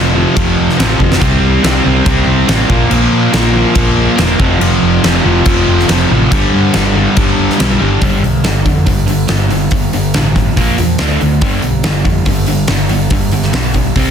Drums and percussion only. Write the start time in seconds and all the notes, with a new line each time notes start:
0.37 kick, crash
0.69 snare
0.80 snare, crash
1.00 kick
1.12 snare
1.22 kick, crash
1.64 snare, crash
2.06 kick, crash
2.49 snare, crash
2.70 kick
2.91 crash
3.33 snare, crash
3.75 kick, crash
4.18 snare, crash
4.40 kick
4.61 crash
5.04 snare, crash
5.46 kick, crash
5.79 snare
5.89 snare, crash
6.32 kick, crash
6.74 snare, crash
7.17 kick, crash
7.50 snare
7.60 snare, crash
8.01 kick, open hi-hat
8.24 open hi-hat
8.44 snare, open hi-hat
8.66 kick, open hi-hat
8.87 kick, open hi-hat
9.08 open hi-hat
9.28 snare, open hi-hat
9.50 open hi-hat
9.71 kick, open hi-hat
9.93 open hi-hat
10.14 snare, open hi-hat
10.36 kick, snare, open hi-hat
10.57 kick, open hi-hat
10.78 open hi-hat
10.98 snare, open hi-hat
11.21 open hi-hat
11.41 kick, open hi-hat
11.62 open hi-hat
11.84 snare, open hi-hat
12.05 kick, open hi-hat
12.26 kick, open hi-hat
12.46 open hi-hat
12.67 snare, open hi-hat
12.89 open hi-hat
13.10 kick, open hi-hat
13.31 open hi-hat
13.42 snare
13.53 snare, open hi-hat
13.74 kick, open hi-hat
13.96 kick, open hi-hat